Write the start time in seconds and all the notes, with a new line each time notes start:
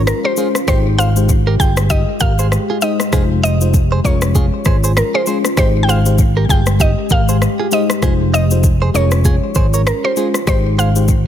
Already playing: G#1 G#3 C#4 F4 C#5
0.07 A#4, cross-stick, shaker
0.25 G4 A#4 C5
0.37 G#3 C#4 F4 G#4 C5, shaker
0.55 cross-stick, shaker
0.68 G#1 G#3 D#4 G4 C5, kick, cross-stick, shaker
0.98 G#4 C5 F5, shaker
1.16 G#3 D#4 G4 C5, shaker
1.29 kick, shaker
1.47 G4 A#4
1.60 G1 F4 G#4 G5, kick, shaker
1.77 cross-stick, shaker
1.90 D#4 G4 D#5, kick, shaker
2.20 G#1 G4 A#4 F5, kick, shaker
2.39 G#4 C5, shaker
2.52 cross-stick, shaker
2.70 F4 G#4
2.82 G#3 D#4 G4 C5 D#5, shaker
3.00 cross-stick, shaker
3.13 F1 G#3 D#4 F4 G#4 C5, kick, cross-stick, shaker
3.43 C5 D#5, shaker
3.61 G#3 D#4 F4 C5, shaker
3.74 kick, shaker
3.92 G#4 C5
4.04 F1 G#3 C#4 F4 A#4 C#5, kick, shaker
4.21 cross-stick, shaker
4.35 F4 G#4, kick, shaker
4.65 G#1 G#4 C5, kick, cross-stick, shaker
4.84 G#4 C5, shaker
4.97 A#4, cross-stick, shaker
5.14 F4 G#4 C5
5.26 G#3 C#4 F4 G#4 C5, shaker
5.45 cross-stick, shaker
5.57 G#1 G#3 D#4 G4 C5, kick, cross-stick, shaker
5.83 G5
5.89 G#4 C5 F5, shaker
6.06 G#3 D#4 G4 C5, shaker
6.18 kick, shaker
6.37 G4 A#4
6.49 G1 F4 G#4 G5, kick, shaker
6.66 cross-stick, shaker
6.80 D#4 G4 D#5, kick, shaker
7.10 G#1 G4 A#4 F5, kick, shaker
7.29 G#4 C5, shaker
7.42 cross-stick, shaker
7.59 F4 G#4
7.71 G#3 D#4 G4 C5 D#5, shaker
7.90 cross-stick, shaker
8.02 F1 G#3 D#4 F4 G#4 C5, kick, cross-stick, shaker
8.34 C5 D#5, shaker
8.51 G#3 D#4 F4 C5, shaker
8.64 kick, shaker
8.82 G#4 C5
8.94 F1 G#3 C#4 F4 A#4 C#5, shaker
9.11 cross-stick, shaker
9.25 F4 G#4, kick, shaker
9.55 G#1 G#4 C5, kick, shaker
9.74 A#4 C#5, shaker
9.87 A#4, cross-stick, shaker
10.04 G4 A#4 C5
10.16 G#3 C#4 F4 G#4 C5, shaker
10.34 cross-stick, shaker
10.47 G#1 G#3 D#4 G4 C5, kick, cross-stick, shaker
10.78 G#4 C5 F5, shaker
10.96 G#3 D#4 G4 C5, shaker
11.08 kick, shaker